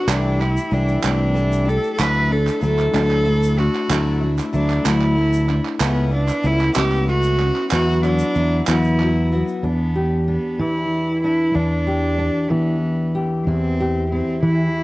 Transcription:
Already playing: cello F#4
0.07 fingered electric bass C2, steel-string acoustic guitar C3 E3 A3 E4 G4, cello D4, clap, shaker
0.39 steel-string acoustic guitar A3 E4 G4, cello E4, clap
0.57 shaker
0.71 fingered electric bass C2, steel-string acoustic guitar E3 A3 E4 G4, cello D4
0.88 shaker
1.03 fingered electric bass C2, steel-string acoustic guitar C3 E3 A3 E4 G4, cello D4, clap, shaker
1.34 steel-string acoustic guitar E3 A3 E4 G4, shaker
1.52 shaker
1.65 steel-string acoustic guitar A3 E4 G4, cello A4, shaker
1.83 shaker
1.93 cello A4
1.98 fingered electric bass D2, steel-string acoustic guitar D3 F#3 A3 D4 E4, cello B4, clap, shaker
2.30 steel-string acoustic guitar A3 D4 E4, cello A4
2.47 clap, shaker
2.61 fingered electric bass D2, steel-string acoustic guitar F#3 A3 D4 E4, cello A4, shaker
2.79 clap, shaker
2.93 fingered electric bass D2, steel-string acoustic guitar D3 F#3 A3 D4 E4, clap, shaker
3.11 clap
3.24 steel-string acoustic guitar F#3 A3 D4 E4
3.43 shaker
3.57 steel-string acoustic guitar A3 D4 E4, cello F#4, clap
3.75 clap
3.89 fingered electric bass D2, steel-string acoustic guitar D3 F#3 A3 D4 E4, clap, shaker
4.21 steel-string acoustic guitar A3 D4 E4
4.38 clap, shaker
4.53 fingered electric bass D2, steel-string acoustic guitar F#3 A3 D4 E4, cello D4, shaker
4.70 clap, shaker
4.85 fingered electric bass D2, steel-string acoustic guitar D3 F#3 A3 D4 E4, cello E4, clap, shaker
5.02 clap
5.15 steel-string acoustic guitar F#3 A3 D4 E4
5.33 shaker
5.48 steel-string acoustic guitar A3 D4 E4, clap
5.66 clap
5.80 fingered electric bass C#2, steel-string acoustic guitar C#3 A3 B3 C#4 E4, cello B3, clap, shaker
6.11 steel-string acoustic guitar B3 E4, cello D4
6.28 clap, shaker
6.43 fingered electric bass C#2, steel-string acoustic guitar A3 B3 C#4 E4, cello E4, shaker
6.59 clap, shaker
6.74 fingered electric bass C#2, steel-string acoustic guitar C#3 A3 B3 C#4 E4, cello G4, clap, shaker
6.92 clap
7.07 steel-string acoustic guitar A3 B3 C#4 E4, cello F#4
7.23 shaker
7.40 steel-string acoustic guitar B3 C#4 E4, clap
7.56 clap
7.70 steel-string acoustic guitar E2 E3 F#3 B3 E4 F#4, fingered electric bass E2, cello F#4, clap, shaker
8.03 steel-string acoustic guitar F#3 B3 E4 F#4, cello D4, clap, shaker
8.19 shaker
8.35 fingered electric bass E2, steel-string acoustic guitar F#3 B3 E4 F#4, shaker
8.66 fingered electric bass E2, steel-string acoustic guitar E2 E3 F#3 B3 E4 F#4, cello E4, clap, shaker
8.84 shaker
9.00 steel-string acoustic guitar F#3 B3 E4 F#4, clap
9.32 steel-string acoustic guitar F#3 B3 E4 F#4
9.47 shaker
9.63 steel-string acoustic guitar E2 D4, fingered electric bass E2, cello B3
9.95 steel-string acoustic guitar G4
10.28 cello B3, steel-string acoustic guitar D4
10.59 steel-string acoustic guitar E3, fingered electric bass E3, cello E4
11.24 steel-string acoustic guitar D4, cello E4
11.54 steel-string acoustic guitar E2 D4, fingered electric bass E2, cello D4
11.87 steel-string acoustic guitar G4
12.19 steel-string acoustic guitar D4
12.50 steel-string acoustic guitar E3, fingered electric bass E3, cello B3
13.15 steel-string acoustic guitar G4
13.47 fingered electric bass E2, steel-string acoustic guitar E2 E4, cello C4
13.81 steel-string acoustic guitar G4
14.12 cello C4, steel-string acoustic guitar E4
14.43 fingered electric bass E3, steel-string acoustic guitar E3, cello E4

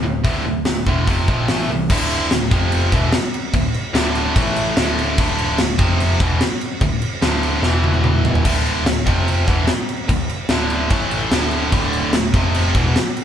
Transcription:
0.03 picked electric bass D1, distorted electric guitar D2 A2
0.24 picked electric bass D1, distorted electric guitar D2 A2 D3, kick, open hi-hat
0.45 distorted electric guitar D2 A2
0.65 picked electric bass D1, distorted electric guitar D2 A2, snare, open hi-hat
0.86 picked electric bass E1, distorted electric guitar D2 A2 D3, kick
1.07 picked electric bass F1, distorted electric guitar F2 C3 F3, kick, open hi-hat
1.28 picked electric bass A#1, distorted electric guitar F2 C3 F3, kick
1.48 picked electric bass A1, distorted electric guitar A2 E3 A3, snare, open hi-hat
1.69 picked electric bass C2, distorted electric guitar A2 E3
1.89 picked electric bass D1, distorted electric guitar D2 A2 D3, kick, crash
2.10 crash
2.30 picked electric bass D1, distorted electric guitar D2 A2, snare, crash
2.51 picked electric bass F1, distorted electric guitar F2 C3 F3, kick, crash
2.72 crash
2.92 picked electric bass E1, distorted electric guitar E2 B2 E3, kick, crash
3.13 snare, crash
3.34 crash
3.54 picked electric bass D1, distorted electric guitar D2 A2, kick, crash
3.74 crash
3.94 picked electric bass D1, distorted electric guitar D2 A2 D3, snare, crash
4.15 crash
4.36 picked electric bass A1, distorted electric guitar A2 E3 A3, kick, crash
4.56 crash
4.77 picked electric bass D1, distorted electric guitar D2 A2 D3, snare, crash
4.99 crash
5.18 picked electric bass D1, distorted electric guitar D2 A2 D3, kick, crash
5.38 crash
5.58 picked electric bass D1, distorted electric guitar D2 A2, snare, crash
5.78 picked electric bass F1, distorted electric guitar F2 C3 F3, kick, crash
6.00 crash
6.20 picked electric bass E1, distorted electric guitar E2 B2 E3, kick, crash
6.41 snare, crash
6.61 crash
6.81 picked electric bass D1, distorted electric guitar D2 A2, kick, crash
7.02 crash
7.22 picked electric bass D1, distorted electric guitar D2 A2 D3, snare, crash
7.43 crash
7.62 picked electric bass E1, distorted electric guitar E2 B2 E3, snare
7.84 high tom
7.94 high tom
8.04 mid tom
8.25 floor tom
8.35 floor tom
8.44 picked electric bass D1, distorted electric guitar D2 A2 D3, kick, crash
8.66 crash
8.85 picked electric bass D1, distorted electric guitar D2 A2, snare, crash
9.06 picked electric bass F1, distorted electric guitar F2 C3 F3, kick, crash
9.28 crash
9.47 picked electric bass E1, distorted electric guitar E2 B2 E3, kick, crash
9.68 snare, crash
9.89 crash
10.09 picked electric bass D1, distorted electric guitar D2 A2, kick, crash
10.29 crash
10.49 picked electric bass D1, distorted electric guitar D2 A2 D3, snare, crash
10.70 crash
10.90 picked electric bass A1, distorted electric guitar A2 E3 A3, kick, crash
11.11 crash
11.31 picked electric bass D1, distorted electric guitar D2 A2 D3, snare, crash
11.51 crash
11.72 picked electric bass D1, distorted electric guitar D2 A2 D3, kick, crash
11.93 crash
12.13 picked electric bass D1, distorted electric guitar D2 A2, snare, crash
12.34 picked electric bass F1, distorted electric guitar F2 C3 F3, kick, crash
12.55 crash
12.75 picked electric bass E1, distorted electric guitar E2 B2 E3, kick, crash
12.96 snare, crash
13.17 crash

